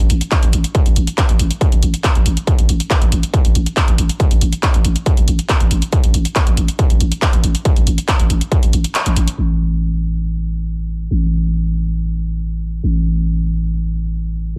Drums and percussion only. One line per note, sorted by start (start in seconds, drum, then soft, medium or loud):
0.10 open hi-hat loud
0.21 closed hi-hat medium
0.32 kick loud
0.32 clap loud
0.32 open hi-hat medium
0.43 closed hi-hat medium
0.53 open hi-hat loud
0.64 closed hi-hat medium
0.75 kick loud
0.75 closed hi-hat medium
0.86 closed hi-hat medium
0.96 open hi-hat loud
1.07 closed hi-hat medium
1.18 kick loud
1.18 clap loud
1.18 closed hi-hat medium
1.29 closed hi-hat medium
1.39 open hi-hat loud
1.51 closed hi-hat medium
1.61 kick loud
1.61 closed hi-hat medium
1.72 closed hi-hat medium
1.83 open hi-hat loud
1.94 closed hi-hat medium
2.04 kick loud
2.04 clap loud
2.04 closed hi-hat medium
2.15 closed hi-hat medium
2.26 open hi-hat loud
2.37 closed hi-hat medium
2.47 kick loud
2.47 closed hi-hat medium
2.59 closed hi-hat medium
2.69 open hi-hat loud
2.80 closed hi-hat medium
2.90 kick loud
2.90 clap loud
2.90 closed hi-hat medium
3.02 closed hi-hat medium
3.12 open hi-hat loud
3.23 closed hi-hat medium
3.34 kick loud
3.34 closed hi-hat medium
3.45 closed hi-hat medium
3.55 open hi-hat loud
3.66 closed hi-hat medium
3.77 kick loud
3.77 clap loud
3.77 open hi-hat medium
3.88 closed hi-hat medium
3.98 open hi-hat loud
4.09 closed hi-hat medium
4.20 kick loud
4.20 closed hi-hat medium
4.31 closed hi-hat medium
4.41 open hi-hat loud
4.53 closed hi-hat medium
4.63 kick loud
4.63 clap loud
4.63 closed hi-hat medium
4.74 closed hi-hat medium
4.85 open hi-hat loud
4.96 closed hi-hat medium
5.06 kick loud
5.06 closed hi-hat medium
5.17 closed hi-hat medium
5.28 open hi-hat loud
5.39 closed hi-hat medium
5.49 kick loud
5.49 clap loud
5.49 closed hi-hat medium
5.60 closed hi-hat medium
5.71 open hi-hat loud
5.82 closed hi-hat medium
5.92 kick loud
5.92 closed hi-hat medium
6.04 closed hi-hat medium
6.14 open hi-hat loud
6.25 closed hi-hat medium
6.36 kick loud
6.36 clap loud
6.36 closed hi-hat medium
6.47 closed hi-hat medium
6.57 open hi-hat loud
6.68 closed hi-hat medium
6.79 kick loud
6.79 closed hi-hat medium
6.90 closed hi-hat medium
7.00 open hi-hat loud
7.12 closed hi-hat medium
7.22 kick loud
7.22 clap loud
7.22 open hi-hat medium
7.33 closed hi-hat medium
7.44 open hi-hat loud
7.55 closed hi-hat medium
7.65 kick loud
7.65 closed hi-hat medium
7.76 open hi-hat medium
7.87 open hi-hat loud
7.98 closed hi-hat medium
8.08 kick loud
8.08 clap loud
8.08 closed hi-hat medium
8.20 closed hi-hat medium
8.30 open hi-hat loud
8.41 closed hi-hat medium
8.52 kick loud
8.52 closed hi-hat medium
8.63 closed hi-hat medium
8.73 open hi-hat loud
8.84 closed hi-hat medium
8.95 clap loud
8.95 closed hi-hat medium
9.06 closed hi-hat medium
9.16 open hi-hat loud
9.28 closed hi-hat medium